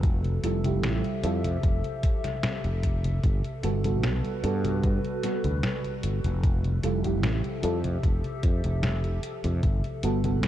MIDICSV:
0, 0, Header, 1, 5, 480
1, 0, Start_track
1, 0, Tempo, 800000
1, 20, Time_signature, 4, 2, 24, 8
1, 6287, End_track
2, 0, Start_track
2, 0, Title_t, "Ambient pad"
2, 0, Program_c, 0, 92
2, 0, Note_on_c, 0, 69, 87
2, 18, Note_on_c, 0, 76, 72
2, 19, Note_on_c, 0, 53, 82
2, 19, Note_on_c, 0, 67, 74
2, 1920, Note_off_c, 0, 76, 0
2, 1921, Note_off_c, 0, 53, 0
2, 1921, Note_off_c, 0, 67, 0
2, 1938, Note_on_c, 0, 55, 79
2, 1938, Note_on_c, 0, 71, 87
2, 1939, Note_on_c, 0, 66, 75
2, 3837, Note_off_c, 0, 69, 0
2, 3840, Note_off_c, 0, 55, 0
2, 3840, Note_off_c, 0, 66, 0
2, 3840, Note_off_c, 0, 71, 0
2, 3860, Note_on_c, 0, 67, 77
2, 3860, Note_on_c, 0, 69, 86
2, 3861, Note_on_c, 0, 53, 81
2, 3861, Note_on_c, 0, 76, 74
2, 5761, Note_off_c, 0, 67, 0
2, 5761, Note_off_c, 0, 69, 0
2, 5761, Note_off_c, 0, 76, 0
2, 5762, Note_off_c, 0, 53, 0
2, 5780, Note_on_c, 0, 66, 72
2, 5781, Note_on_c, 0, 55, 84
2, 5781, Note_on_c, 0, 71, 91
2, 5782, Note_on_c, 0, 69, 77
2, 6287, Note_off_c, 0, 55, 0
2, 6287, Note_off_c, 0, 66, 0
2, 6287, Note_off_c, 0, 69, 0
2, 6287, Note_off_c, 0, 71, 0
2, 6287, End_track
3, 0, Start_track
3, 0, Title_t, "FM electric piano"
3, 0, Program_c, 1, 5
3, 259, Note_on_c, 1, 55, 80
3, 263, Note_on_c, 1, 64, 74
3, 266, Note_on_c, 1, 65, 71
3, 268, Note_on_c, 1, 69, 85
3, 355, Note_off_c, 1, 55, 0
3, 357, Note_off_c, 1, 64, 0
3, 358, Note_off_c, 1, 65, 0
3, 359, Note_off_c, 1, 69, 0
3, 385, Note_on_c, 1, 55, 72
3, 388, Note_on_c, 1, 64, 72
3, 390, Note_on_c, 1, 65, 70
3, 393, Note_on_c, 1, 67, 82
3, 712, Note_off_c, 1, 55, 0
3, 714, Note_off_c, 1, 64, 0
3, 715, Note_off_c, 1, 65, 0
3, 717, Note_off_c, 1, 67, 0
3, 739, Note_on_c, 1, 55, 94
3, 741, Note_on_c, 1, 64, 87
3, 744, Note_on_c, 1, 65, 90
3, 748, Note_on_c, 1, 69, 104
3, 821, Note_off_c, 1, 55, 0
3, 821, Note_off_c, 1, 64, 0
3, 823, Note_off_c, 1, 65, 0
3, 825, Note_off_c, 1, 69, 0
3, 2178, Note_on_c, 1, 55, 88
3, 2180, Note_on_c, 1, 59, 82
3, 2185, Note_on_c, 1, 66, 83
3, 2187, Note_on_c, 1, 69, 99
3, 2275, Note_off_c, 1, 55, 0
3, 2275, Note_off_c, 1, 59, 0
3, 2278, Note_off_c, 1, 66, 0
3, 2279, Note_off_c, 1, 69, 0
3, 2305, Note_on_c, 1, 55, 75
3, 2309, Note_on_c, 1, 59, 69
3, 2311, Note_on_c, 1, 66, 71
3, 2313, Note_on_c, 1, 69, 83
3, 2633, Note_off_c, 1, 55, 0
3, 2634, Note_off_c, 1, 59, 0
3, 2636, Note_off_c, 1, 66, 0
3, 2637, Note_off_c, 1, 69, 0
3, 2662, Note_on_c, 1, 55, 96
3, 2664, Note_on_c, 1, 59, 87
3, 2668, Note_on_c, 1, 66, 86
3, 2669, Note_on_c, 1, 69, 113
3, 3114, Note_off_c, 1, 55, 0
3, 3115, Note_off_c, 1, 59, 0
3, 3116, Note_off_c, 1, 66, 0
3, 3117, Note_off_c, 1, 69, 0
3, 3140, Note_on_c, 1, 55, 74
3, 3143, Note_on_c, 1, 59, 68
3, 3146, Note_on_c, 1, 66, 65
3, 3149, Note_on_c, 1, 69, 83
3, 3269, Note_off_c, 1, 55, 0
3, 3271, Note_off_c, 1, 59, 0
3, 3272, Note_off_c, 1, 66, 0
3, 3274, Note_off_c, 1, 69, 0
3, 4097, Note_on_c, 1, 55, 81
3, 4100, Note_on_c, 1, 64, 73
3, 4103, Note_on_c, 1, 65, 75
3, 4105, Note_on_c, 1, 69, 88
3, 4194, Note_off_c, 1, 55, 0
3, 4195, Note_off_c, 1, 64, 0
3, 4197, Note_off_c, 1, 65, 0
3, 4198, Note_off_c, 1, 69, 0
3, 4221, Note_on_c, 1, 55, 78
3, 4223, Note_on_c, 1, 64, 68
3, 4228, Note_on_c, 1, 65, 70
3, 4230, Note_on_c, 1, 67, 86
3, 4551, Note_off_c, 1, 55, 0
3, 4551, Note_off_c, 1, 64, 0
3, 4554, Note_off_c, 1, 65, 0
3, 4555, Note_off_c, 1, 67, 0
3, 4576, Note_on_c, 1, 55, 98
3, 4579, Note_on_c, 1, 64, 88
3, 4582, Note_on_c, 1, 65, 87
3, 4585, Note_on_c, 1, 69, 105
3, 4659, Note_off_c, 1, 55, 0
3, 4660, Note_off_c, 1, 64, 0
3, 4662, Note_off_c, 1, 65, 0
3, 4663, Note_off_c, 1, 69, 0
3, 6019, Note_on_c, 1, 55, 91
3, 6022, Note_on_c, 1, 59, 88
3, 6024, Note_on_c, 1, 66, 83
3, 6028, Note_on_c, 1, 69, 103
3, 6115, Note_off_c, 1, 55, 0
3, 6116, Note_off_c, 1, 59, 0
3, 6118, Note_off_c, 1, 66, 0
3, 6119, Note_off_c, 1, 69, 0
3, 6142, Note_on_c, 1, 55, 74
3, 6145, Note_on_c, 1, 59, 70
3, 6147, Note_on_c, 1, 66, 69
3, 6152, Note_on_c, 1, 69, 85
3, 6287, Note_off_c, 1, 55, 0
3, 6287, Note_off_c, 1, 59, 0
3, 6287, Note_off_c, 1, 66, 0
3, 6287, Note_off_c, 1, 69, 0
3, 6287, End_track
4, 0, Start_track
4, 0, Title_t, "Fretless electric bass"
4, 0, Program_c, 2, 35
4, 0, Note_on_c, 2, 29, 105
4, 228, Note_off_c, 2, 29, 0
4, 261, Note_on_c, 2, 29, 86
4, 500, Note_off_c, 2, 29, 0
4, 500, Note_on_c, 2, 33, 95
4, 603, Note_off_c, 2, 33, 0
4, 741, Note_on_c, 2, 41, 103
4, 940, Note_off_c, 2, 41, 0
4, 981, Note_on_c, 2, 29, 92
4, 1084, Note_off_c, 2, 29, 0
4, 1587, Note_on_c, 2, 29, 93
4, 1908, Note_off_c, 2, 29, 0
4, 1943, Note_on_c, 2, 31, 104
4, 2045, Note_off_c, 2, 31, 0
4, 2182, Note_on_c, 2, 31, 89
4, 2422, Note_off_c, 2, 31, 0
4, 2422, Note_on_c, 2, 35, 95
4, 2524, Note_off_c, 2, 35, 0
4, 2662, Note_on_c, 2, 43, 106
4, 2991, Note_off_c, 2, 43, 0
4, 3266, Note_on_c, 2, 38, 88
4, 3360, Note_off_c, 2, 38, 0
4, 3622, Note_on_c, 2, 31, 83
4, 3724, Note_off_c, 2, 31, 0
4, 3746, Note_on_c, 2, 29, 103
4, 4068, Note_off_c, 2, 29, 0
4, 4103, Note_on_c, 2, 29, 85
4, 4342, Note_off_c, 2, 29, 0
4, 4342, Note_on_c, 2, 33, 93
4, 4444, Note_off_c, 2, 33, 0
4, 4582, Note_on_c, 2, 41, 109
4, 4780, Note_off_c, 2, 41, 0
4, 4821, Note_on_c, 2, 29, 92
4, 4923, Note_off_c, 2, 29, 0
4, 5061, Note_on_c, 2, 41, 85
4, 5164, Note_off_c, 2, 41, 0
4, 5186, Note_on_c, 2, 29, 92
4, 5507, Note_off_c, 2, 29, 0
4, 5667, Note_on_c, 2, 41, 101
4, 5760, Note_off_c, 2, 41, 0
4, 5780, Note_on_c, 2, 31, 105
4, 5883, Note_off_c, 2, 31, 0
4, 6021, Note_on_c, 2, 31, 88
4, 6262, Note_off_c, 2, 31, 0
4, 6262, Note_on_c, 2, 35, 92
4, 6287, Note_off_c, 2, 35, 0
4, 6287, End_track
5, 0, Start_track
5, 0, Title_t, "Drums"
5, 20, Note_on_c, 9, 42, 53
5, 20, Note_on_c, 9, 63, 46
5, 21, Note_on_c, 9, 36, 123
5, 80, Note_off_c, 9, 42, 0
5, 80, Note_off_c, 9, 63, 0
5, 81, Note_off_c, 9, 36, 0
5, 146, Note_on_c, 9, 42, 27
5, 146, Note_on_c, 9, 63, 27
5, 206, Note_off_c, 9, 42, 0
5, 206, Note_off_c, 9, 63, 0
5, 261, Note_on_c, 9, 42, 95
5, 321, Note_off_c, 9, 42, 0
5, 386, Note_on_c, 9, 42, 54
5, 386, Note_on_c, 9, 63, 55
5, 446, Note_off_c, 9, 42, 0
5, 446, Note_off_c, 9, 63, 0
5, 501, Note_on_c, 9, 38, 118
5, 501, Note_on_c, 9, 42, 52
5, 501, Note_on_c, 9, 63, 46
5, 561, Note_off_c, 9, 38, 0
5, 561, Note_off_c, 9, 42, 0
5, 561, Note_off_c, 9, 63, 0
5, 626, Note_on_c, 9, 42, 26
5, 626, Note_on_c, 9, 63, 27
5, 686, Note_off_c, 9, 42, 0
5, 686, Note_off_c, 9, 63, 0
5, 741, Note_on_c, 9, 42, 91
5, 801, Note_off_c, 9, 42, 0
5, 867, Note_on_c, 9, 42, 56
5, 867, Note_on_c, 9, 63, 55
5, 927, Note_off_c, 9, 42, 0
5, 927, Note_off_c, 9, 63, 0
5, 980, Note_on_c, 9, 42, 54
5, 980, Note_on_c, 9, 63, 43
5, 981, Note_on_c, 9, 36, 124
5, 1040, Note_off_c, 9, 42, 0
5, 1040, Note_off_c, 9, 63, 0
5, 1041, Note_off_c, 9, 36, 0
5, 1106, Note_on_c, 9, 42, 27
5, 1106, Note_on_c, 9, 63, 25
5, 1166, Note_off_c, 9, 42, 0
5, 1166, Note_off_c, 9, 63, 0
5, 1220, Note_on_c, 9, 42, 86
5, 1221, Note_on_c, 9, 36, 114
5, 1280, Note_off_c, 9, 42, 0
5, 1281, Note_off_c, 9, 36, 0
5, 1346, Note_on_c, 9, 38, 39
5, 1346, Note_on_c, 9, 42, 53
5, 1346, Note_on_c, 9, 63, 53
5, 1406, Note_off_c, 9, 38, 0
5, 1406, Note_off_c, 9, 42, 0
5, 1406, Note_off_c, 9, 63, 0
5, 1460, Note_on_c, 9, 38, 124
5, 1460, Note_on_c, 9, 42, 53
5, 1460, Note_on_c, 9, 63, 46
5, 1520, Note_off_c, 9, 38, 0
5, 1520, Note_off_c, 9, 42, 0
5, 1520, Note_off_c, 9, 63, 0
5, 1586, Note_on_c, 9, 42, 25
5, 1586, Note_on_c, 9, 63, 25
5, 1646, Note_off_c, 9, 42, 0
5, 1646, Note_off_c, 9, 63, 0
5, 1700, Note_on_c, 9, 42, 90
5, 1701, Note_on_c, 9, 36, 67
5, 1760, Note_off_c, 9, 42, 0
5, 1761, Note_off_c, 9, 36, 0
5, 1826, Note_on_c, 9, 42, 54
5, 1826, Note_on_c, 9, 63, 55
5, 1886, Note_off_c, 9, 42, 0
5, 1886, Note_off_c, 9, 63, 0
5, 1941, Note_on_c, 9, 42, 52
5, 1941, Note_on_c, 9, 63, 46
5, 1942, Note_on_c, 9, 36, 118
5, 2001, Note_off_c, 9, 42, 0
5, 2001, Note_off_c, 9, 63, 0
5, 2002, Note_off_c, 9, 36, 0
5, 2067, Note_on_c, 9, 42, 26
5, 2067, Note_on_c, 9, 63, 28
5, 2127, Note_off_c, 9, 42, 0
5, 2127, Note_off_c, 9, 63, 0
5, 2181, Note_on_c, 9, 42, 93
5, 2241, Note_off_c, 9, 42, 0
5, 2306, Note_on_c, 9, 42, 51
5, 2306, Note_on_c, 9, 63, 54
5, 2366, Note_off_c, 9, 42, 0
5, 2366, Note_off_c, 9, 63, 0
5, 2421, Note_on_c, 9, 38, 122
5, 2421, Note_on_c, 9, 42, 49
5, 2421, Note_on_c, 9, 63, 46
5, 2481, Note_off_c, 9, 38, 0
5, 2481, Note_off_c, 9, 42, 0
5, 2481, Note_off_c, 9, 63, 0
5, 2547, Note_on_c, 9, 42, 25
5, 2547, Note_on_c, 9, 63, 26
5, 2607, Note_off_c, 9, 42, 0
5, 2607, Note_off_c, 9, 63, 0
5, 2662, Note_on_c, 9, 42, 86
5, 2722, Note_off_c, 9, 42, 0
5, 2787, Note_on_c, 9, 42, 50
5, 2787, Note_on_c, 9, 63, 55
5, 2847, Note_off_c, 9, 42, 0
5, 2847, Note_off_c, 9, 63, 0
5, 2901, Note_on_c, 9, 42, 51
5, 2901, Note_on_c, 9, 63, 43
5, 2902, Note_on_c, 9, 36, 113
5, 2961, Note_off_c, 9, 42, 0
5, 2961, Note_off_c, 9, 63, 0
5, 2962, Note_off_c, 9, 36, 0
5, 3027, Note_on_c, 9, 42, 25
5, 3027, Note_on_c, 9, 63, 27
5, 3087, Note_off_c, 9, 42, 0
5, 3087, Note_off_c, 9, 63, 0
5, 3141, Note_on_c, 9, 38, 36
5, 3141, Note_on_c, 9, 42, 91
5, 3201, Note_off_c, 9, 38, 0
5, 3201, Note_off_c, 9, 42, 0
5, 3265, Note_on_c, 9, 42, 50
5, 3265, Note_on_c, 9, 63, 55
5, 3325, Note_off_c, 9, 42, 0
5, 3325, Note_off_c, 9, 63, 0
5, 3380, Note_on_c, 9, 38, 117
5, 3380, Note_on_c, 9, 42, 52
5, 3380, Note_on_c, 9, 63, 45
5, 3440, Note_off_c, 9, 38, 0
5, 3440, Note_off_c, 9, 42, 0
5, 3440, Note_off_c, 9, 63, 0
5, 3507, Note_on_c, 9, 42, 26
5, 3507, Note_on_c, 9, 63, 26
5, 3567, Note_off_c, 9, 42, 0
5, 3567, Note_off_c, 9, 63, 0
5, 3620, Note_on_c, 9, 42, 90
5, 3680, Note_off_c, 9, 42, 0
5, 3746, Note_on_c, 9, 42, 50
5, 3746, Note_on_c, 9, 63, 53
5, 3806, Note_off_c, 9, 42, 0
5, 3806, Note_off_c, 9, 63, 0
5, 3861, Note_on_c, 9, 36, 115
5, 3861, Note_on_c, 9, 42, 53
5, 3861, Note_on_c, 9, 63, 48
5, 3921, Note_off_c, 9, 36, 0
5, 3921, Note_off_c, 9, 42, 0
5, 3921, Note_off_c, 9, 63, 0
5, 3986, Note_on_c, 9, 42, 26
5, 3986, Note_on_c, 9, 63, 29
5, 4046, Note_off_c, 9, 42, 0
5, 4046, Note_off_c, 9, 63, 0
5, 4101, Note_on_c, 9, 42, 91
5, 4161, Note_off_c, 9, 42, 0
5, 4226, Note_on_c, 9, 42, 50
5, 4226, Note_on_c, 9, 63, 58
5, 4286, Note_off_c, 9, 42, 0
5, 4286, Note_off_c, 9, 63, 0
5, 4340, Note_on_c, 9, 38, 114
5, 4340, Note_on_c, 9, 42, 52
5, 4340, Note_on_c, 9, 63, 46
5, 4400, Note_off_c, 9, 38, 0
5, 4400, Note_off_c, 9, 42, 0
5, 4400, Note_off_c, 9, 63, 0
5, 4465, Note_on_c, 9, 42, 26
5, 4465, Note_on_c, 9, 63, 28
5, 4525, Note_off_c, 9, 42, 0
5, 4525, Note_off_c, 9, 63, 0
5, 4579, Note_on_c, 9, 42, 92
5, 4639, Note_off_c, 9, 42, 0
5, 4705, Note_on_c, 9, 42, 52
5, 4705, Note_on_c, 9, 63, 57
5, 4765, Note_off_c, 9, 42, 0
5, 4765, Note_off_c, 9, 63, 0
5, 4820, Note_on_c, 9, 36, 111
5, 4821, Note_on_c, 9, 42, 51
5, 4821, Note_on_c, 9, 63, 46
5, 4880, Note_off_c, 9, 36, 0
5, 4881, Note_off_c, 9, 42, 0
5, 4881, Note_off_c, 9, 63, 0
5, 4945, Note_on_c, 9, 42, 26
5, 4945, Note_on_c, 9, 63, 28
5, 5005, Note_off_c, 9, 42, 0
5, 5005, Note_off_c, 9, 63, 0
5, 5059, Note_on_c, 9, 42, 88
5, 5060, Note_on_c, 9, 36, 110
5, 5119, Note_off_c, 9, 42, 0
5, 5120, Note_off_c, 9, 36, 0
5, 5184, Note_on_c, 9, 42, 53
5, 5184, Note_on_c, 9, 63, 57
5, 5244, Note_off_c, 9, 42, 0
5, 5244, Note_off_c, 9, 63, 0
5, 5298, Note_on_c, 9, 38, 114
5, 5298, Note_on_c, 9, 42, 53
5, 5298, Note_on_c, 9, 63, 46
5, 5358, Note_off_c, 9, 38, 0
5, 5358, Note_off_c, 9, 42, 0
5, 5358, Note_off_c, 9, 63, 0
5, 5424, Note_on_c, 9, 42, 25
5, 5424, Note_on_c, 9, 63, 28
5, 5484, Note_off_c, 9, 42, 0
5, 5484, Note_off_c, 9, 63, 0
5, 5539, Note_on_c, 9, 42, 84
5, 5599, Note_off_c, 9, 42, 0
5, 5664, Note_on_c, 9, 42, 53
5, 5664, Note_on_c, 9, 63, 57
5, 5724, Note_off_c, 9, 42, 0
5, 5724, Note_off_c, 9, 63, 0
5, 5778, Note_on_c, 9, 42, 54
5, 5778, Note_on_c, 9, 63, 52
5, 5780, Note_on_c, 9, 36, 112
5, 5838, Note_off_c, 9, 42, 0
5, 5838, Note_off_c, 9, 63, 0
5, 5840, Note_off_c, 9, 36, 0
5, 5905, Note_on_c, 9, 42, 26
5, 5905, Note_on_c, 9, 63, 30
5, 5965, Note_off_c, 9, 42, 0
5, 5965, Note_off_c, 9, 63, 0
5, 6019, Note_on_c, 9, 42, 94
5, 6079, Note_off_c, 9, 42, 0
5, 6144, Note_on_c, 9, 42, 52
5, 6144, Note_on_c, 9, 63, 61
5, 6204, Note_off_c, 9, 42, 0
5, 6204, Note_off_c, 9, 63, 0
5, 6259, Note_on_c, 9, 38, 109
5, 6259, Note_on_c, 9, 42, 52
5, 6259, Note_on_c, 9, 63, 48
5, 6287, Note_off_c, 9, 38, 0
5, 6287, Note_off_c, 9, 42, 0
5, 6287, Note_off_c, 9, 63, 0
5, 6287, End_track
0, 0, End_of_file